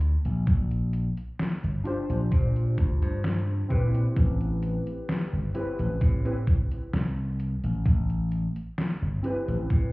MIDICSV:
0, 0, Header, 1, 5, 480
1, 0, Start_track
1, 0, Key_signature, 0, "minor"
1, 0, Tempo, 923077
1, 245, Time_signature, 4, 2, 24, 8
1, 5160, End_track
2, 0, Start_track
2, 0, Title_t, "Synth keys"
2, 0, Program_c, 0, 88
2, 956, Note_on_c, 0, 62, 77
2, 962, Note_on_c, 0, 65, 74
2, 967, Note_on_c, 0, 67, 72
2, 972, Note_on_c, 0, 72, 84
2, 1893, Note_off_c, 0, 62, 0
2, 1896, Note_off_c, 0, 65, 0
2, 1899, Note_off_c, 0, 67, 0
2, 1901, Note_off_c, 0, 72, 0
2, 1916, Note_on_c, 0, 60, 81
2, 1921, Note_on_c, 0, 64, 73
2, 1927, Note_on_c, 0, 67, 77
2, 1932, Note_on_c, 0, 71, 90
2, 2853, Note_off_c, 0, 60, 0
2, 2856, Note_off_c, 0, 64, 0
2, 2859, Note_off_c, 0, 67, 0
2, 2861, Note_off_c, 0, 71, 0
2, 2882, Note_on_c, 0, 60, 76
2, 2885, Note_on_c, 0, 64, 70
2, 2888, Note_on_c, 0, 67, 70
2, 2890, Note_on_c, 0, 71, 84
2, 3219, Note_off_c, 0, 60, 0
2, 3221, Note_off_c, 0, 64, 0
2, 3222, Note_off_c, 0, 67, 0
2, 3223, Note_off_c, 0, 71, 0
2, 3247, Note_on_c, 0, 60, 82
2, 3250, Note_on_c, 0, 64, 74
2, 3253, Note_on_c, 0, 67, 74
2, 3255, Note_on_c, 0, 71, 86
2, 3306, Note_off_c, 0, 60, 0
2, 3307, Note_off_c, 0, 64, 0
2, 3309, Note_off_c, 0, 67, 0
2, 3310, Note_off_c, 0, 71, 0
2, 4797, Note_on_c, 0, 60, 77
2, 4803, Note_on_c, 0, 64, 70
2, 4808, Note_on_c, 0, 67, 73
2, 4813, Note_on_c, 0, 71, 89
2, 5160, Note_off_c, 0, 60, 0
2, 5160, Note_off_c, 0, 64, 0
2, 5160, Note_off_c, 0, 67, 0
2, 5160, Note_off_c, 0, 71, 0
2, 5160, End_track
3, 0, Start_track
3, 0, Title_t, "Slap bass"
3, 0, Program_c, 1, 36
3, 0, Note_on_c, 1, 38, 87
3, 82, Note_off_c, 1, 38, 0
3, 132, Note_on_c, 1, 34, 85
3, 218, Note_off_c, 1, 34, 0
3, 245, Note_on_c, 1, 34, 99
3, 562, Note_off_c, 1, 34, 0
3, 851, Note_on_c, 1, 31, 80
3, 937, Note_off_c, 1, 31, 0
3, 1090, Note_on_c, 1, 34, 89
3, 1177, Note_off_c, 1, 34, 0
3, 1205, Note_on_c, 1, 46, 88
3, 1442, Note_off_c, 1, 46, 0
3, 1445, Note_on_c, 1, 38, 85
3, 1571, Note_off_c, 1, 38, 0
3, 1571, Note_on_c, 1, 43, 94
3, 1881, Note_off_c, 1, 43, 0
3, 1926, Note_on_c, 1, 46, 93
3, 2110, Note_off_c, 1, 46, 0
3, 2165, Note_on_c, 1, 33, 97
3, 2482, Note_off_c, 1, 33, 0
3, 2771, Note_on_c, 1, 31, 77
3, 2857, Note_off_c, 1, 31, 0
3, 3012, Note_on_c, 1, 33, 89
3, 3098, Note_off_c, 1, 33, 0
3, 3125, Note_on_c, 1, 45, 87
3, 3442, Note_off_c, 1, 45, 0
3, 3605, Note_on_c, 1, 36, 89
3, 3922, Note_off_c, 1, 36, 0
3, 3971, Note_on_c, 1, 33, 86
3, 4057, Note_off_c, 1, 33, 0
3, 4085, Note_on_c, 1, 33, 100
3, 4402, Note_off_c, 1, 33, 0
3, 4690, Note_on_c, 1, 31, 81
3, 4777, Note_off_c, 1, 31, 0
3, 4930, Note_on_c, 1, 33, 94
3, 5017, Note_off_c, 1, 33, 0
3, 5045, Note_on_c, 1, 45, 91
3, 5160, Note_off_c, 1, 45, 0
3, 5160, End_track
4, 0, Start_track
4, 0, Title_t, "Muted slap bass strokes"
4, 3491, Note_on_c, 9, 29, 42
4, 3543, Note_off_c, 9, 29, 0
4, 5160, End_track
5, 0, Start_track
5, 0, Title_t, "Drums"
5, 4, Note_on_c, 9, 42, 82
5, 56, Note_off_c, 9, 42, 0
5, 130, Note_on_c, 9, 42, 51
5, 182, Note_off_c, 9, 42, 0
5, 244, Note_on_c, 9, 42, 77
5, 245, Note_on_c, 9, 36, 124
5, 296, Note_off_c, 9, 42, 0
5, 297, Note_off_c, 9, 36, 0
5, 370, Note_on_c, 9, 42, 37
5, 422, Note_off_c, 9, 42, 0
5, 484, Note_on_c, 9, 42, 79
5, 536, Note_off_c, 9, 42, 0
5, 610, Note_on_c, 9, 42, 51
5, 662, Note_off_c, 9, 42, 0
5, 725, Note_on_c, 9, 38, 120
5, 725, Note_on_c, 9, 42, 78
5, 777, Note_off_c, 9, 38, 0
5, 777, Note_off_c, 9, 42, 0
5, 851, Note_on_c, 9, 42, 38
5, 903, Note_off_c, 9, 42, 0
5, 964, Note_on_c, 9, 42, 77
5, 1016, Note_off_c, 9, 42, 0
5, 1091, Note_on_c, 9, 42, 51
5, 1143, Note_off_c, 9, 42, 0
5, 1205, Note_on_c, 9, 36, 123
5, 1205, Note_on_c, 9, 42, 77
5, 1257, Note_off_c, 9, 36, 0
5, 1257, Note_off_c, 9, 42, 0
5, 1331, Note_on_c, 9, 42, 34
5, 1383, Note_off_c, 9, 42, 0
5, 1445, Note_on_c, 9, 36, 115
5, 1445, Note_on_c, 9, 42, 80
5, 1497, Note_off_c, 9, 36, 0
5, 1497, Note_off_c, 9, 42, 0
5, 1572, Note_on_c, 9, 42, 52
5, 1624, Note_off_c, 9, 42, 0
5, 1686, Note_on_c, 9, 38, 127
5, 1686, Note_on_c, 9, 42, 82
5, 1738, Note_off_c, 9, 38, 0
5, 1738, Note_off_c, 9, 42, 0
5, 1925, Note_on_c, 9, 36, 65
5, 1926, Note_on_c, 9, 42, 80
5, 1977, Note_off_c, 9, 36, 0
5, 1978, Note_off_c, 9, 42, 0
5, 2051, Note_on_c, 9, 42, 52
5, 2103, Note_off_c, 9, 42, 0
5, 2165, Note_on_c, 9, 42, 73
5, 2166, Note_on_c, 9, 36, 123
5, 2217, Note_off_c, 9, 42, 0
5, 2218, Note_off_c, 9, 36, 0
5, 2292, Note_on_c, 9, 42, 35
5, 2344, Note_off_c, 9, 42, 0
5, 2405, Note_on_c, 9, 42, 75
5, 2457, Note_off_c, 9, 42, 0
5, 2532, Note_on_c, 9, 42, 51
5, 2584, Note_off_c, 9, 42, 0
5, 2646, Note_on_c, 9, 38, 120
5, 2646, Note_on_c, 9, 42, 74
5, 2698, Note_off_c, 9, 38, 0
5, 2698, Note_off_c, 9, 42, 0
5, 2885, Note_on_c, 9, 42, 80
5, 2937, Note_off_c, 9, 42, 0
5, 3011, Note_on_c, 9, 42, 49
5, 3063, Note_off_c, 9, 42, 0
5, 3125, Note_on_c, 9, 42, 77
5, 3126, Note_on_c, 9, 36, 118
5, 3177, Note_off_c, 9, 42, 0
5, 3178, Note_off_c, 9, 36, 0
5, 3252, Note_on_c, 9, 42, 34
5, 3304, Note_off_c, 9, 42, 0
5, 3365, Note_on_c, 9, 42, 76
5, 3366, Note_on_c, 9, 36, 112
5, 3417, Note_off_c, 9, 42, 0
5, 3418, Note_off_c, 9, 36, 0
5, 3491, Note_on_c, 9, 42, 50
5, 3543, Note_off_c, 9, 42, 0
5, 3606, Note_on_c, 9, 38, 119
5, 3606, Note_on_c, 9, 42, 77
5, 3658, Note_off_c, 9, 38, 0
5, 3658, Note_off_c, 9, 42, 0
5, 3846, Note_on_c, 9, 42, 73
5, 3898, Note_off_c, 9, 42, 0
5, 3971, Note_on_c, 9, 42, 51
5, 4023, Note_off_c, 9, 42, 0
5, 4085, Note_on_c, 9, 42, 74
5, 4086, Note_on_c, 9, 36, 123
5, 4137, Note_off_c, 9, 42, 0
5, 4138, Note_off_c, 9, 36, 0
5, 4211, Note_on_c, 9, 42, 36
5, 4263, Note_off_c, 9, 42, 0
5, 4326, Note_on_c, 9, 42, 77
5, 4378, Note_off_c, 9, 42, 0
5, 4452, Note_on_c, 9, 42, 52
5, 4504, Note_off_c, 9, 42, 0
5, 4566, Note_on_c, 9, 38, 119
5, 4566, Note_on_c, 9, 42, 77
5, 4618, Note_off_c, 9, 38, 0
5, 4618, Note_off_c, 9, 42, 0
5, 4806, Note_on_c, 9, 42, 77
5, 4858, Note_off_c, 9, 42, 0
5, 4932, Note_on_c, 9, 42, 53
5, 4984, Note_off_c, 9, 42, 0
5, 5045, Note_on_c, 9, 36, 117
5, 5045, Note_on_c, 9, 42, 77
5, 5097, Note_off_c, 9, 36, 0
5, 5097, Note_off_c, 9, 42, 0
5, 5160, End_track
0, 0, End_of_file